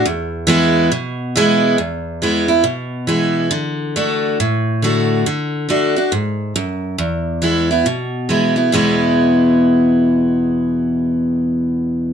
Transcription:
0.05 0.88 E2 medium
0.47 0.89 E3 loud
0.47 0.90 G#3 loud
0.47 0.90 B3 loud
0.47 0.90 E4 medium
0.92 1.75 B2 medium
1.36 1.77 E3 loud
1.36 1.77 G#3 loud
1.36 1.77 B3 loud
1.36 1.78 E4 loud
1.78 2.61 E2 medium
2.22 2.48 E3 medium
2.22 2.48 G#3 medium
2.22 2.48 B3 medium
2.22 2.47 E4 medium
2.48 2.64 B3 soft
2.48 2.64 E4 medium
2.64 3.47 B2 medium
3.07 3.49 E3 medium
3.07 3.50 G#3 medium
3.07 3.50 B3 medium
3.07 3.50 E4 medium
3.51 3.95 D3 medium
3.96 4.37 D3 medium
3.96 4.37 A3 medium
3.96 4.38 D4 medium
3.96 4.37 F#4 medium
4.40 5.22 A2 medium
4.82 5.24 D3 medium
4.82 5.24 A3 medium
4.82 5.25 D4 medium
4.82 5.25 F#4 medium
5.26 5.67 D3 medium
5.69 5.95 D3 medium
5.69 5.95 A3 medium
5.69 5.95 D4 medium
5.69 5.95 F#4 medium
5.96 6.12 D4 medium
5.96 6.11 F#4 medium
6.12 6.54 G#2 medium
6.56 6.97 F#2 medium
6.98 7.82 E2 medium
7.42 7.68 E3 medium
7.42 7.68 G#3 medium
7.42 7.69 B3 medium
7.42 7.69 E4 medium
7.71 7.86 B3 soft
7.71 7.85 E4 medium
7.86 8.69 B2 medium
8.29 8.55 E3 soft
8.29 8.55 G#3 medium
8.29 8.56 B3 medium
8.29 8.55 E4 medium
8.56 8.72 B3 soft
8.56 8.71 E4 medium
8.72 12.13 E2 medium
8.72 12.13 B2 medium
8.72 12.13 E3 medium
8.72 12.13 G#3 medium
8.72 12.13 B3 medium
8.72 12.13 E4 medium

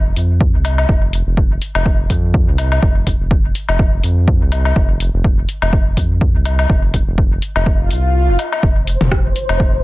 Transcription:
0.00 0.13 F1 loud
0.16 0.56 F2 medium
0.16 open hi-hat medium
0.41 kick loud
0.54 0.86 C2 loud
0.65 open hi-hat loud
0.65 low woodblock medium
0.78 low woodblock medium
0.89 1.23 F1 loud
0.89 kick loud
1.13 open hi-hat medium
1.27 1.58 F1 medium
1.37 kick loud
1.62 open hi-hat medium
1.75 2.07 F1 loud
1.75 low woodblock medium
1.86 kick loud
2.10 2.49 F2 medium
2.10 kick medium
2.10 open hi-hat medium
2.34 kick loud
2.48 2.79 C2 loud
2.58 open hi-hat medium
2.58 low woodblock medium
2.72 low woodblock medium
2.83 3.16 F1 loud
2.83 kick loud
3.07 kick medium
3.07 open hi-hat medium
3.20 3.52 F1 medium
3.31 kick loud
3.55 open hi-hat medium
3.69 4.00 F1 loud
3.69 low woodblock medium
3.79 kick loud
4.04 4.43 F2 medium
4.04 open hi-hat medium
4.28 kick loud
4.41 4.73 C2 loud
4.52 open hi-hat medium
4.52 low woodblock soft
4.65 low woodblock medium
4.76 5.10 F1 loud
4.76 kick loud
5.00 open hi-hat medium
5.14 5.45 F1 medium
5.24 kick loud
5.49 open hi-hat medium
5.62 5.94 F1 loud
5.62 low woodblock medium
5.73 kick loud
5.97 6.36 F2 medium
5.97 kick medium
5.97 open hi-hat medium
6.21 kick loud
6.35 6.66 C2 loud
6.45 open hi-hat medium
6.45 low woodblock soft
6.59 low woodblock medium
6.70 7.03 F1 loud
6.70 kick loud
6.94 kick medium
6.94 open hi-hat medium
7.07 7.39 F1 medium
7.18 kick loud
7.42 open hi-hat medium
7.56 7.92 F1 loud
7.56 low woodblock medium
7.66 kick loud
7.66 swell medium
7.91 8.30 C2 medium
7.91 open hi-hat medium
8.28 8.37 F1 medium
8.39 open hi-hat medium
8.39 low woodblock soft
8.52 low woodblock medium
8.63 8.97 F1 loud
8.63 9.84 C5 medium
8.63 kick loud
8.87 open hi-hat medium
9.01 9.32 F1 medium
9.01 mid tom medium
9.12 kick loud
9.12 cross-stick medium
9.36 open hi-hat medium
9.49 9.81 F1 loud
9.49 low woodblock medium
9.60 kick loud

